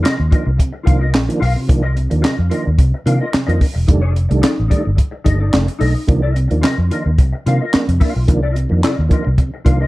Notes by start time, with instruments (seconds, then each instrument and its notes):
0.03 tonewheel organ C3, clean electric guitar F4 A#4 D#5, snare, clap, closed hi-hat
0.18 fingered electric bass D#2, muted clean electric guitar stroke
0.30 tonewheel organ D#3 F3 A#3 D4, clean electric guitar F4 A#4 D#5, kick, closed hi-hat
0.45 fingered electric bass C2, tonewheel organ A#3 D4, muted clean electric guitar stroke
0.57 tonewheel organ C3, muted clean electric guitar stroke, kick, closed hi-hat
0.73 muted clean electric guitar stroke
0.83 fingered electric bass C2, tonewheel organ D#3 F3 A#3 D4, clean electric guitar F4 A#4 F5, kick, closed hi-hat
0.99 tonewheel organ A#3 D4, clean electric guitar F4 A#4 D#5
1.15 fingered electric bass A#1, snare, clap, closed hi-hat
1.28 tonewheel organ D#3 F3 A#3 D4, muted clean electric guitar stroke, closed hi-hat
1.40 fingered electric bass B1, clean electric guitar F4 A#4 F5, open hi-hat
1.55 tonewheel organ C3, muted clean electric guitar stroke
1.67 fingered electric bass C2, tonewheel organ D#3 F3 A#3 D4, muted clean electric guitar stroke, kick, closed hi-hat
1.83 clean electric guitar F4 A#4 D#5
1.94 tonewheel organ C3, muted clean electric guitar stroke, closed hi-hat
2.10 fingered electric bass D#2, tonewheel organ D#3 F3 A#3 D4, muted clean electric guitar stroke, closed hi-hat
2.22 tonewheel organ C3, clean electric guitar F4 A#4 D#5, snare, clap, closed hi-hat
2.37 fingered electric bass F2, muted clean electric guitar stroke
2.50 tonewheel organ D#3 F3 A#3 D4, clean electric guitar F4 A#4 D#5, closed hi-hat
2.65 fingered electric bass D#2, tonewheel organ A#3 D4, muted clean electric guitar stroke
2.78 fingered electric bass C2, tonewheel organ C3, muted clean electric guitar stroke, kick, closed hi-hat
2.94 muted clean electric guitar stroke
3.06 fingered electric bass C3, tonewheel organ D#3 F3 A#3 D4, clean electric guitar F4 A#4 F5, closed hi-hat
3.21 tonewheel organ A#3 D4, clean electric guitar F4 A#4 D#5
3.34 tonewheel organ C3, muted clean electric guitar stroke, muted fingered electric bass stroke, snare, clap, closed hi-hat
3.47 fingered electric bass F2, tonewheel organ D#3 F3 A#3 D4, clean electric guitar F4 A#4 D#5, closed hi-hat
3.61 tonewheel organ A#3 D4, muted clean electric guitar stroke, kick, open hi-hat
3.74 fingered electric bass E1, muted clean electric guitar stroke
3.87 fingered electric bass F1, tonewheel organ D#3 G3 A3 D4, muted clean electric guitar stroke, kick, closed hi-hat
4.02 clean electric guitar D#4 A4 D5
4.14 muted clean electric guitar stroke, closed hi-hat
4.29 fingered electric bass C2, tonewheel organ D#3 G3 A3 D4, muted clean electric guitar stroke, closed hi-hat
4.42 clean electric guitar D#4 A4 D5, snare, clap, closed hi-hat
4.55 muted clean electric guitar stroke
4.60 fingered electric bass A1
4.68 tonewheel organ D#3 G3 A3 D4, clean electric guitar D#4 A4 D5, kick, closed hi-hat
4.84 fingered electric bass G1, tonewheel organ A3 D4, muted clean electric guitar stroke
4.95 muted clean electric guitar stroke, kick, closed hi-hat
5.11 muted clean electric guitar stroke
5.24 fingered electric bass G1, tonewheel organ D#3 G3 A3 D4, clean electric guitar D#4 A4 D#5, kick, closed hi-hat
5.39 tonewheel organ A3 D4, clean electric guitar D#4 A4 D5
5.53 fingered electric bass F1, tonewheel organ A3 D4, snare, clap, closed hi-hat
5.67 muted clean electric guitar stroke, closed hi-hat
5.79 fingered electric bass B1, tonewheel organ A3 D4, clean electric guitar D#4 A4 D#5, open hi-hat
5.94 muted clean electric guitar stroke
6.07 fingered electric bass C2, tonewheel organ D#3 F3 A#3 D4, muted clean electric guitar stroke, kick, closed hi-hat
6.22 clean electric guitar F4 A#4 D#5
6.35 tonewheel organ C3, muted clean electric guitar stroke, closed hi-hat
6.48 fingered electric bass D#2, tonewheel organ D#3 F3 A#3 D4, muted clean electric guitar stroke, closed hi-hat
6.61 tonewheel organ C3, clean electric guitar F4 A#4 D#5, snare, clap, closed hi-hat
6.77 fingered electric bass F2, muted clean electric guitar stroke
6.90 tonewheel organ D#3 F3 A#3 D4, clean electric guitar F4 A#4 D#5, closed hi-hat
7.05 fingered electric bass D#2, tonewheel organ A#3 D4, muted clean electric guitar stroke
7.18 fingered electric bass C2, tonewheel organ C3, muted clean electric guitar stroke, kick, closed hi-hat
7.33 muted clean electric guitar stroke
7.46 fingered electric bass C3, tonewheel organ D#3 F3 A#3 D4, clean electric guitar F4 A#4 F5, closed hi-hat
7.61 tonewheel organ A#3 D4, clean electric guitar F4 A#4 D#5
7.73 tonewheel organ A#3 D4, muted fingered electric bass stroke, snare, clap, closed hi-hat
7.88 fingered electric bass F2, tonewheel organ C3, muted clean electric guitar stroke, closed hi-hat
8.00 tonewheel organ A#3 D4, clean electric guitar F4 A#4 F5, kick, open hi-hat
8.15 fingered electric bass B1, muted clean electric guitar stroke
8.28 fingered electric bass C2, tonewheel organ D#3 F3 A#3 D4, muted clean electric guitar stroke, kick, closed hi-hat
8.43 clean electric guitar F4 A#4 D#5
8.55 tonewheel organ C3, muted clean electric guitar stroke, closed hi-hat
8.69 fingered electric bass F2, tonewheel organ D#3 F3 A#3 D4, muted clean electric guitar stroke
8.82 tonewheel organ C3, clean electric guitar F4 A#4 D#5, snare, clap, closed hi-hat
8.99 fingered electric bass D#2, muted clean electric guitar stroke
9.09 tonewheel organ D#3 F3 A#3 D4, clean electric guitar F4 A#4, kick, closed hi-hat
9.13 clean electric guitar D#5
9.25 fingered electric bass C2, tonewheel organ A#3 D4, muted clean electric guitar stroke
9.37 tonewheel organ C3, muted clean electric guitar stroke, kick, closed hi-hat
9.54 muted clean electric guitar stroke
9.65 fingered electric bass C2, tonewheel organ D#3 F3 A#3 D4, clean electric guitar F4 A#4 F5, kick, closed hi-hat
9.80 tonewheel organ A#3 D4, clean electric guitar F4 A#4 D#5